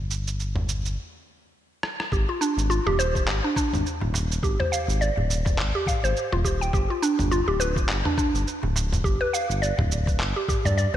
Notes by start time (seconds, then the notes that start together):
Already playing: G1
0.11 cabasa
0.28 cabasa
0.40 cabasa
0.56 mid tom
0.69 cabasa
0.85 cabasa
1.83 cross-stick
2.00 cross-stick
2.12 G#1 G4, kick, cabasa
2.28 F4, darbuka ka
2.41 D4, cabasa
2.57 G#1, darbuka ka, cabasa
2.70 F4, cabasa
2.86 D#1 G4, mid tom, darbuka tek
2.98 C5, darbuka ka, cabasa
3.15 kick, darbuka tek, cabasa
3.27 G#1, clap, cabasa
3.44 D4, darbuka ka
3.56 D4, kick, cabasa
3.73 G#1, mid tom, cabasa
3.86 cabasa
4.01 D#1, darbuka tek, darbuka dum
4.14 darbuka tek, cabasa
4.32 cabasa
4.43 G#1 G4, kick, cabasa
4.60 C5, mid tom, darbuka ka
4.72 F5, cabasa
4.88 G#1, darbuka ka, cabasa
5.01 D5, cabasa
5.16 D#1, darbuka tek, darbuka dum
5.29 darbuka ka, cabasa
5.45 kick, mid tom, darbuka tek, cabasa
5.58 G#1, clap, cabasa
5.75 G4, darbuka ka
5.86 F5, kick, darbuka dum, cabasa
6.04 G#1 C5, cabasa
6.17 cabasa
6.32 D#1 F4, mid tom, darbuka tek
6.45 G4, kick, cabasa
6.61 G5, darbuka ka, cabasa
6.73 G1 G4, kick, cabasa
6.90 F4, darbuka ka
7.02 D4, cabasa
7.19 G1, mid tom, darbuka ka, cabasa
7.31 F4, cabasa
7.48 D1 G4, darbuka tek
7.60 B4, darbuka ka, cabasa
7.76 kick, darbuka tek, cabasa
7.89 G1, clap, cabasa
8.05 D4, mid tom, darbuka ka
8.18 D4, kick, cabasa
8.34 G1, cabasa
8.48 cabasa
8.63 D1, darbuka tek, darbuka dum
8.76 darbuka tek, cabasa
8.93 mid tom, cabasa
9.04 G1 G4, kick, cabasa
9.21 B4, darbuka ka
9.33 F5, cabasa
9.50 G1, darbuka ka, cabasa
9.62 D5, cabasa
9.78 D1, mid tom, darbuka tek, darbuka dum
9.91 darbuka ka, cabasa
10.07 kick, darbuka tek, cabasa
10.20 G1, clap, cabasa
10.36 G4, darbuka ka
10.48 G4, kick, darbuka dum, cabasa
10.65 G2 D5, mid tom, cabasa
10.78 D5, cabasa